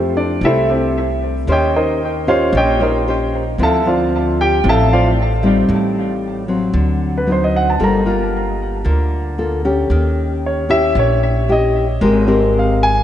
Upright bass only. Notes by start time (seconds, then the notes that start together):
Already playing: F2
0.41 C2
1.47 D#2
2.53 A#1
3.58 D2
4.64 A1
5.69 A1
6.74 D2
7.80 G1
8.86 D2
9.90 D#2
10.95 A#1
12.01 G#1